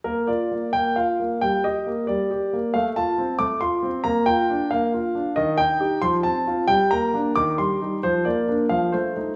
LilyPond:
<<
  \new Staff \with { instrumentName = "Grand piano" } { \time 6/8 \key bes \major \tempo 4. = 90 bes'8 d''4 g''8 f''4 | g''8 ees''4 d''4. | f''8 a''4 d'''8 c'''4 | bes''8 g''4 f''4. |
ees''8 g''4 c'''8 a''4 | g''8 bes''4 d'''8 c'''4 | c''8 d''4 f''8 c''4 | }
  \new Staff \with { instrumentName = "Grand piano" } { \time 6/8 \key bes \major bes8 f'8 bes8 bes8 f'8 bes8 | g8 g'8 bes8 g8 g'8 bes8 | a8 f'8 c'8 a8 f'8 c'8 | bes8 f'8 d'8 bes8 f'8 d'8 |
ees8 ees'8 <ees' g'>8 f8 c'8 <c' f'>8 | g8 bes8 <bes d'>8 ees8 g8 <g ees'>8 | f8 bes8 <bes d'>8 f8 a8 <a ees'>8 | }
>>